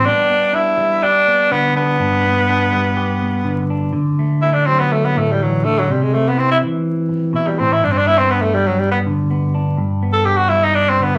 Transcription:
0.05 clean electric guitar G3 B3 D4 G4, tenor saxophone D4, muted clean electric guitar stroke
0.30 clean electric guitar B3
0.53 clean electric guitar D4, tenor saxophone E4
0.77 clean electric guitar G3
1.03 tenor saxophone D4, clean electric guitar G4
1.27 clean electric guitar B3
1.51 clean electric guitar D3, tenor saxophone B3
1.76 tenor saxophone B3, clean electric guitar D4
1.99 clean electric guitar G2 D4
2.25 clean electric guitar B3
2.49 clean electric guitar D4
2.72 clean electric guitar G3
2.97 clean electric guitar G4
3.22 clean electric guitar B3
3.44 clean electric guitar D3
3.70 clean electric guitar D4
3.93 clean electric guitar D3
4.19 clean electric guitar A3
4.42 clean electric guitar A3, tenor saxophone E4
4.53 tenor saxophone D4
4.66 clean electric guitar F#3, tenor saxophone C4
4.79 tenor saxophone B3
4.93 tenor saxophone A3
5.05 tenor saxophone B3
5.15 clean electric guitar A2, tenor saxophone A3
5.32 tenor saxophone G3
5.40 clean electric guitar E3, tenor saxophone F#3
5.64 clean electric guitar D3, tenor saxophone A3
5.79 tenor saxophone F#3
5.90 clean electric guitar C3, tenor saxophone G3
6.03 tenor saxophone G#3
6.14 tenor saxophone A3, clean electric guitar C4
6.28 tenor saxophone B3
6.36 tenor saxophone C4, clean electric guitar E4
6.51 tenor saxophone E4
6.62 clean electric guitar E3
7.09 muted clean electric guitar stroke
7.33 clean electric guitar B2, tenor saxophone E4
7.47 tenor saxophone G3
7.59 clean electric guitar A2, tenor saxophone C4
7.73 tenor saxophone E4
7.83 clean electric guitar G2, tenor saxophone D4
7.92 tenor saxophone C4
7.98 tenor saxophone D4
8.07 clean electric guitar B3, tenor saxophone E4
8.18 tenor saxophone C4
8.31 tenor saxophone B3, clean electric guitar D4
8.42 tenor saxophone A3
8.54 tenor saxophone G3, clean electric guitar G3
8.66 tenor saxophone F#3
8.79 tenor saxophone G3
8.91 tenor saxophone B3
9.06 clean electric guitar D3
9.30 clean electric guitar B3
9.54 clean electric guitar D4
9.77 clean electric guitar G2
10.03 clean electric guitar B3
10.13 tenor saxophone A4
10.25 clean electric guitar D4, tenor saxophone G4
10.37 tenor saxophone F#4
10.49 clean electric guitar G3, tenor saxophone E4
10.63 tenor saxophone D#4
10.75 tenor saxophone D4
10.89 tenor saxophone C4
11.00 clean electric guitar D3, tenor saxophone B3

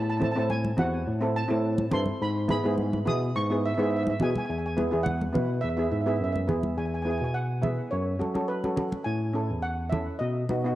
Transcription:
Already playing: tine electric piano A2
0.02 steel pan A5
0.10 steel pan A5
0.17 steel pan C4 E4 A5
0.21 steel pan A4 A5, high conga, low conga
0.32 steel pan C4 A5
0.36 tine electric piano A2, steel pan E4 A4 A5
0.50 steel pan G#5, high conga
0.64 high conga
0.77 tine electric piano E2, steel pan C4 E4 F#4 F#5, low conga
1.07 tine electric piano A2
1.21 steel pan C4 E4 A4
1.36 steel pan A5
1.48 tine electric piano A2, steel pan C4 E4 A4
1.78 high conga
1.91 tine electric piano G2, steel pan C4 E4 A4 C6, low conga
2.06 high conga
2.21 tine electric piano G#2, steel pan B5
2.48 steel pan B3 E4 G#4 B5, high conga, low conga
2.64 tine electric piano G#2, steel pan B3 E4 G#4
2.78 high conga
2.93 high conga
3.05 tine electric piano B2, steel pan B3 E4 G#4 D#6, low conga
3.36 tine electric piano G#2, steel pan C#6
3.50 steel pan B3 E4 G#4
3.66 steel pan E5
3.74 tine electric piano G#2, steel pan B3 E5
3.79 steel pan E4 G#4 E5
3.90 steel pan E5
3.96 steel pan E5
4.03 steel pan E5, high conga
4.10 steel pan E5
4.20 tine electric piano B2, steel pan B3 E4 G#4 G#5, low conga
4.30 steel pan G#5
4.35 steel pan G#5, high conga
4.45 steel pan G#5
4.49 tine electric piano E2, steel pan G#5
4.58 steel pan G#5
4.66 steel pan G#5
4.77 steel pan B3 E4 G#4, high conga
4.91 tine electric piano E2, steel pan B3 E4 G#4
5.03 steel pan F#5, high conga, low conga
5.21 high conga
5.33 tine electric piano B2, steel pan B3 E4 B4, low conga
5.61 tine electric piano E2, steel pan E5
5.69 steel pan E5
5.77 steel pan B3 E4 G#4 E5
5.84 steel pan E5
5.92 tine electric piano G#2, steel pan E5
6.01 steel pan E5
6.06 steel pan B3 E4 G#4 E5
6.16 steel pan E5
6.20 tine electric piano F#2, steel pan E5
6.32 steel pan E5, high conga
6.47 tine electric piano E2, steel pan B3 E4 G#4, low conga
6.63 high conga
6.77 tine electric piano E2, steel pan G#5
6.86 steel pan G#5
6.94 steel pan G#5
7.02 steel pan B3 E4 G#5
7.07 steel pan G#4 G#5
7.18 tine electric piano B2, steel pan G#5
7.24 steel pan G#5
7.34 steel pan F#5
7.62 steel pan B3 E4 G#4 E5, high conga, low conga
7.91 tine electric piano F#2, steel pan C#5
8.19 tine electric piano F#3, steel pan C#4 F#4 A4, high conga
8.34 steel pan C#4 F#4 A4, high conga
8.48 steel pan B4
8.64 steel pan C#4 F#4 A4, high conga
8.77 steel pan C#4 F#4 A4, low conga
8.92 high conga
9.04 tine electric piano A2, steel pan G#5
9.33 steel pan C#4 E4 A4
9.50 tine electric piano E2
9.63 steel pan F#5
9.90 steel pan C#4 E4 A4 E5, high conga, low conga
10.19 tine electric piano B2, steel pan D#5
10.49 tine electric piano B2, steel pan B3 D#4 F#4, high conga
10.64 steel pan B3 D#4 F#4

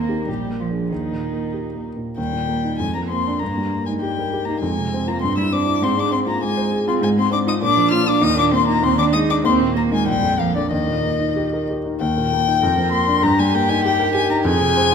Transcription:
Already playing: grand piano D#2 A#3, cello A#3, violin A#4
0.09 grand piano D#4 G4
0.28 grand piano A#1, cello G3, violin G4
0.49 grand piano A#3
0.60 cello F3, violin F4
0.70 grand piano D4 G#4
0.90 grand piano D#2, cello D#3, violin D#4
1.12 grand piano A#2
1.33 grand piano A#3
1.54 grand piano G4
1.74 grand piano A#3
1.97 grand piano A#2
2.17 grand piano D#2, cello G3, violin G5
2.33 grand piano A#2
2.49 grand piano A#3
2.64 grand piano D#4
2.79 grand piano F2, cello G#3, violin G#5
2.94 grand piano F3, cello A#3, violin A#5
3.09 grand piano A#3, cello C4, violin C6
3.27 grand piano D4
3.39 grand piano G2, cello A#3, violin A#5
3.58 grand piano G3
3.73 grand piano A#3
3.86 cello G#3, grand piano D#4, violin G#5
4.00 cello G3, grand piano G4, violin G5
4.18 grand piano A#4
4.33 grand piano G4
4.45 cello A#3, grand piano D#4, violin A#5
4.60 grand piano F2, cello G#3, violin G#5
4.78 grand piano C3
4.93 grand piano C4
5.07 cello A#3, grand piano F4, violin A#5
5.22 grand piano G2, cello C4, violin C6
5.37 grand piano G3, cello E4, violin E6
5.52 grand piano C4, cello D4, violin D6
5.67 grand piano E4
5.82 grand piano G#2, cello C4, violin C6
5.96 grand piano G#3, cello D4, violin D6
6.11 grand piano C4, cello C4, violin C6
6.26 cello A#3, grand piano F4, violin A#5
6.41 cello G#3, grand piano G#4, violin G#5
6.57 grand piano C5
6.72 grand piano G#4
6.87 cello C4, grand piano F4, violin C6
7.01 grand piano G#2, cello G#3, violin G#5
7.17 grand piano G#3, cello C4, violin C6
7.30 grand piano C4, cello D4, violin D6
7.46 cello D#4, grand piano F4, violin D#6
7.61 grand piano A#2, cello D4, violin D6
7.77 grand piano F3
7.91 grand piano A#3, cello F4, violin F6
8.06 cello D4, grand piano F4, violin D6
8.22 grand piano D#2, cello D#4, violin D#6
8.37 grand piano A#2, cello D4, violin D6
8.51 grand piano A#3, cello C4, violin C6
8.67 cello A#3, grand piano D#4, violin A#5
8.83 grand piano D#2, cello C4, violin C6
8.98 grand piano D#3, cello D4, violin D6
9.13 grand piano G#3, cello D#4, violin D#6
9.29 cello D4, grand piano D#4, violin D6
9.44 grand piano D#2, cello C4, violin C6
9.60 grand piano A#2
9.75 cello A#3, grand piano A#3, violin A#5
9.91 cello G#3, grand piano D#4, violin G#5
10.06 grand piano A#1, cello G3, violin G5
10.23 grand piano F2
10.39 cello F3, grand piano A#3, violin F5
10.54 cello D3, grand piano D4, violin D5
10.71 grand piano D#2, cello D#3, violin D#5
10.87 grand piano A#2
11.03 grand piano A#3
11.20 grand piano D#4
11.36 grand piano G4
11.53 grand piano A#4
11.70 grand piano G4
11.86 grand piano D#4
12.00 grand piano D#2, violin G5
12.17 grand piano A#2
12.33 grand piano A#3
12.47 grand piano D#4
12.62 grand piano F2, cello A#4
12.78 grand piano F3
12.92 grand piano A#3, violin C6
13.07 grand piano D4
13.23 grand piano G2, cello G4, violin A#5
13.39 grand piano G3, violin G#5
13.54 grand piano A#3, violin G5
13.69 grand piano D#4, violin G#5
13.85 grand piano G4, violin G5
13.99 grand piano A#4
14.14 grand piano G4, violin G#5
14.30 grand piano D#4, violin A#5
14.45 grand piano F2, cello G#4, violin G#5
14.61 grand piano C3
14.77 grand piano C4

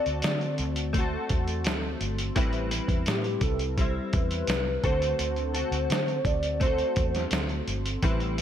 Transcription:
Already playing: clean electric guitar A3 C4 F#4 A4, soft synth lead D5
0.06 fingered electric bass D2, closed hi-hat
0.22 fingered electric bass D3, snare, closed hi-hat
0.41 closed hi-hat
0.58 fingered electric bass D2, closed hi-hat
0.76 closed hi-hat
0.93 clean electric guitar A3 C4, kick, closed hi-hat
0.98 clean electric guitar F#4 A4
1.29 fingered electric bass E2, kick, closed hi-hat
1.48 closed hi-hat
1.64 fingered electric bass D2, snare, closed hi-hat
2.01 fingered electric bass G1, closed hi-hat
2.18 closed hi-hat
2.36 fingered electric bass A1, clean electric guitar A2 E3 G3 C4 E4 B4, kick, closed hi-hat
2.53 closed hi-hat
2.71 clean electric guitar G3 C4 E4 B4, closed hi-hat
2.88 fingered electric bass E2, kick, closed hi-hat
3.06 fingered electric bass A2, soft synth lead G4, snare, closed hi-hat
3.24 closed hi-hat
3.41 fingered electric bass C2, soft synth lead A4, kick, closed hi-hat
3.59 closed hi-hat
3.78 clean electric guitar G3 C4 E4, soft synth lead C5, kick, closed hi-hat
4.13 fingered electric bass E2, soft synth lead B4, kick, closed hi-hat
4.31 closed hi-hat
4.47 fingered electric bass C2, snare, closed hi-hat
4.84 fingered electric bass D2, clean electric guitar D3 A3 C4 F#4 A4, soft synth lead C5, kick, closed hi-hat
5.02 closed hi-hat
5.19 fingered electric bass D2, soft synth lead C5, closed hi-hat
5.36 closed hi-hat
5.54 clean electric guitar C4 F#4 A4, closed hi-hat
5.72 fingered electric bass D2, closed hi-hat
5.90 fingered electric bass D3, snare, closed hi-hat
6.08 closed hi-hat
6.25 fingered electric bass D2, soft synth lead D5, kick, closed hi-hat
6.43 closed hi-hat
6.60 clean electric guitar A3 C4, soft synth lead C5, kick, closed hi-hat
6.65 clean electric guitar F#4 A4
6.78 closed hi-hat
6.96 fingered electric bass E2, kick, closed hi-hat
7.15 snare, closed hi-hat
7.31 fingered electric bass D2, snare, closed hi-hat
7.49 closed hi-hat
7.67 fingered electric bass G1, closed hi-hat
7.86 closed hi-hat
8.03 fingered electric bass A1, clean electric guitar A2 E3 G3 C4 E4 B4, kick, closed hi-hat
8.20 closed hi-hat
8.38 closed hi-hat

